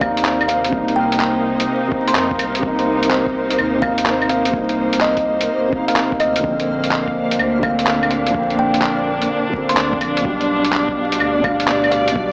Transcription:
Already playing: C3 A#3 D#4 G4 C5 D5 F5
0.00 D#2 A#3 F5, kick, claves
0.05 D#4
0.17 closed hi-hat
0.25 clap
0.41 claves
0.48 F5, closed hi-hat
0.65 closed hi-hat
0.69 C2 C3 A#3, kick
0.77 D#4
0.88 closed hi-hat
0.96 G5
1.12 closed hi-hat
1.20 clap
1.60 closed hi-hat
1.88 C3 A#3
1.92 D#4, kick
2.08 C6, closed hi-hat
2.15 F2, clap
2.31 kick
2.39 C2, closed hi-hat, claves
2.55 C3, closed hi-hat
2.63 C2 A#3, kick
2.67 D#4
2.79 closed hi-hat
3.03 closed hi-hat
3.11 clap
3.27 kick
3.50 closed hi-hat
3.58 D#2, claves
3.78 D#2 C3 F5
3.82 A#3, kick, claves
3.86 D#4
3.98 closed hi-hat
4.06 clap
4.22 claves
4.29 F5, closed hi-hat
4.45 closed hi-hat
4.50 C2 C3, kick
4.54 A#3 D#4
4.69 closed hi-hat
4.93 closed hi-hat
5.01 D#5, clap
5.17 kick, closed hi-hat
5.41 closed hi-hat
5.68 C3
5.72 A#3, kick
5.76 D#4
5.88 F5, closed hi-hat
5.96 clap
6.12 kick
6.20 D2 D#5, closed hi-hat, claves
6.36 closed hi-hat
6.40 A#2 D3
6.44 A#1 A#3, kick
6.48 C4
6.60 closed hi-hat
6.84 closed hi-hat
6.91 clap
7.08 D4, kick
7.31 closed hi-hat
7.39 D2, claves
7.59 D3
7.63 D2 A#3 F5, kick, claves
7.67 C4
7.79 closed hi-hat
7.87 clap
8.03 claves
8.11 F5, closed hi-hat
8.27 D3, closed hi-hat
8.34 A#1 A#3 C4, kick
8.50 closed hi-hat
8.59 G5
8.74 closed hi-hat
8.82 clap
9.22 closed hi-hat
9.49 D3
9.53 A#3, kick
9.57 C4
9.69 C6, closed hi-hat
9.77 D2, clap
9.93 kick
10.01 A#1, closed hi-hat, claves
10.17 B2, closed hi-hat
10.24 B1 B2 G3, kick
10.29 D4
10.41 closed hi-hat
10.64 closed hi-hat
10.73 clap
10.80 G3
10.88 kick
11.06 D5
11.12 closed hi-hat
11.20 D2, claves
11.40 B2
11.44 D2 G3 D4 F5, kick, claves
11.60 closed hi-hat
11.68 clap
11.84 claves
11.91 F5, closed hi-hat
12.08 B2, closed hi-hat
12.15 B1 G3, kick
12.19 D4

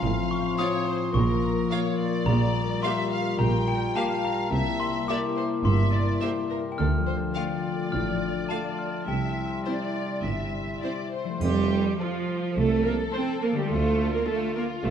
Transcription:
Already playing: F3 F4 F5 C6
0.02 A1 A2 C4
0.22 F3
0.31 C#6
0.40 C5
0.58 C4 F4 C#5 F5 D#6
0.77 F4
0.87 C5
0.96 C5
1.13 A#1 A#2 A#3 A#4 C#6
1.33 F3
1.51 A#4
1.70 A#3 F4 C#5 F5
1.88 F4
1.99 D5
2.07 A#4
2.26 A#1 A#2 G3 F4 A#5
2.45 G3
2.64 A#4
2.82 A#3 G4 E5 F5 C6
3.00 G4
3.11 F5
3.19 A#4
3.38 A#1 A#2 G5 A#5
3.57 G3
3.68 G5
3.75 A#4
3.94 A#3 G4 F5 A5
4.13 G4
4.25 A#5
4.33 A#4
4.50 C2 C3 A#3 E4 E5
4.69 G3
4.80 C6
4.89 A#4
5.07 A#3 G4 D5 E5 D6
5.26 G4
5.37 C5
5.44 A#4
5.63 G1 G2 C4 E5 C6
5.82 G3
5.94 D5
6.02 A#4
6.21 A#3 G4 C5 E5
6.40 G4
6.50 A#4
6.60 A#4
6.72 G5
6.78 D2 D3 A3 F4 A4 F6
6.98 F3
7.07 C5
7.17 A4
7.35 A3 F4 D5 F5 G5
7.55 F4
7.73 A4
7.92 A1 A2 D4 F6
8.11 F3
8.30 A4
8.49 A3 F4 F5 A5
8.69 F4
8.79 F6
8.87 A4
9.06 C2 C3 G3 E4 E5 G5
9.28 C4
9.47 C5
9.66 C4 E4 C5 D5 E5
9.87 C5
10.06 E4
10.24 G1 G2 G3 E5
10.44 C4
10.64 C5
10.83 C4 E4 C5 D5 E5
11.04 C5
11.13 C5
11.23 F3 E4
11.29 A3
11.33 F4
11.38 F1 G4 C5, triangle
11.42 F2 G3
11.99 F3 F4 A4
12.56 C2 A3 A4
12.84 A#3 A#4
13.13 C4 A4 C5
13.41 A#3 A#4
13.52 D3
13.56 G3 A3 G4
13.61 F4
13.65 C5
13.70 D2 A3 F4 A4
14.13 A#3 A#4
14.26 A3 F4 A4
14.55 A#3 A#4
14.82 A1 A3 A4

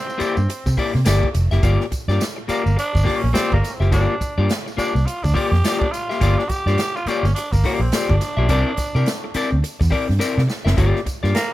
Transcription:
Already playing: C4
0.07 muted clean electric guitar stroke, tambourine
0.18 A#3 E4 G4 D5, muted fingered electric bass stroke, closed hi-hat, tambourine
0.37 G2, muted clean electric guitar stroke, tambourine
0.49 muted clean electric guitar stroke, closed hi-hat, tambourine
0.66 C3, muted clean electric guitar stroke, kick, snare, tambourine
0.77 A#3 E4 G4 D5, kick, open hi-hat
0.94 C3, muted clean electric guitar stroke, snare
1.05 G1 A#3 E4 G4 D5, snare, closed hi-hat, tambourine
1.23 kick
1.34 F1, muted clean electric guitar stroke, closed hi-hat, tambourine
1.51 F#1 A#3 E4 G4 E5, snare, tambourine
1.62 G1 A#3 F4 G4 D5, kick, closed hi-hat, tambourine
1.80 snare
1.91 muted clean electric guitar stroke, muted fingered electric bass stroke, kick, closed hi-hat, tambourine
2.08 G2 A#3 F4 G4 D5, snare, tambourine
2.20 snare, closed hi-hat, tambourine
2.36 muted clean electric guitar stroke
2.48 A#3 F4 G4 D5, muted fingered electric bass stroke, closed hi-hat, tambourine
2.65 G1, muted clean electric guitar stroke, tambourine
2.77 D4, muted clean electric guitar stroke, closed hi-hat, tambourine
2.93 G1, muted clean electric guitar stroke, kick, tambourine
3.04 A#3 F4 G4 D5, kick, open hi-hat
3.08 snare
3.16 C#4
3.22 A#1, muted clean electric guitar stroke
3.30 A#3 C4 C#4 F4 G4
3.34 D5, snare, closed hi-hat, tambourine
3.52 G1 A#3, kick
3.62 muted clean electric guitar stroke, snare, closed hi-hat, tambourine
3.69 C#4
3.73 C4
3.80 F#1 A#3 F4 G4 E5, tambourine
3.92 G1 A#3 D4 F4 G4 D5, kick, closed hi-hat, tambourine
4.20 muted clean electric guitar stroke, muted fingered electric bass stroke, kick, closed hi-hat, tambourine
4.38 G2 A#3 F4 G4 D5
4.49 snare, closed hi-hat, tambourine
4.66 muted clean electric guitar stroke, tambourine
4.77 A#3 D4 F4 G4 D5, muted fingered electric bass stroke, closed hi-hat, tambourine
4.95 C2, muted clean electric guitar stroke, tambourine
5.06 F4, muted clean electric guitar stroke, closed hi-hat, tambourine
5.23 D2 D4, muted clean electric guitar stroke, kick, tambourine
5.34 A#3 F4 G4 D5, kick, open hi-hat
5.52 F2, muted clean electric guitar stroke, snare
5.64 A#3 F4 G4 D5, snare, closed hi-hat, tambourine
5.80 D4, kick
5.92 F4, muted clean electric guitar stroke, closed hi-hat, tambourine
6.09 A#3 F4 G4 E5, snare, tambourine
6.20 G1 A#3 F4 G4 D5, kick, closed hi-hat, tambourine
6.38 D4, snare
6.49 G4, muted clean electric guitar stroke, muted fingered electric bass stroke, kick, closed hi-hat, tambourine
6.66 G2 A#3 F4 G4 D5, snare, tambourine
6.78 snare, closed hi-hat, tambourine
6.96 F4, muted clean electric guitar stroke, tambourine
7.06 A#3 C#4 F4 G4, muted fingered electric bass stroke, closed hi-hat, tambourine
7.10 D5
7.23 G1, muted clean electric guitar stroke, snare, tambourine
7.34 D4, muted clean electric guitar stroke, closed hi-hat, tambourine
7.52 G1 A#3, muted clean electric guitar stroke, kick, tambourine
7.64 A#3 F4 G4 D5, kick, snare, open hi-hat
7.79 A#1 C4, muted clean electric guitar stroke
7.91 A#3 F4 G4 D5, muted fingered electric bass stroke, snare, closed hi-hat, tambourine
8.09 G1 D4, kick
8.21 muted clean electric guitar stroke, snare, closed hi-hat, tambourine
8.37 B1 A#3 F4 G4 E5
8.49 C2 C4 E4 A#4 D5, kick, closed hi-hat, tambourine
8.77 muted clean electric guitar stroke, muted fingered electric bass stroke, kick, closed hi-hat, tambourine
8.95 C3 C4 E4 A#4 D5, tambourine
9.06 snare, closed hi-hat, tambourine
9.24 muted clean electric guitar stroke
9.34 C4 E4 A#4 D5, muted fingered electric bass stroke, closed hi-hat, tambourine
9.51 D2, muted clean electric guitar stroke
9.63 muted clean electric guitar stroke, closed hi-hat, tambourine
9.80 E2, muted clean electric guitar stroke, kick, snare, tambourine
9.90 C4 E4 A#4 D5, kick, open hi-hat
10.08 G2, muted clean electric guitar stroke, snare
10.19 C4 E4 A#4 D5, snare, tambourine
10.38 C3, snare
10.47 muted clean electric guitar stroke, snare, tambourine
10.65 F#1 C4 E4 A#4 E5, snare
10.77 G1 A#3 F4 G4 D5, kick, closed hi-hat, tambourine
10.96 snare
11.05 muted clean electric guitar stroke, muted fingered electric bass stroke, kick, closed hi-hat, tambourine
11.23 G2 A#3 F4 G4 D5, snare, tambourine
11.35 A#3, snare, closed hi-hat, tambourine

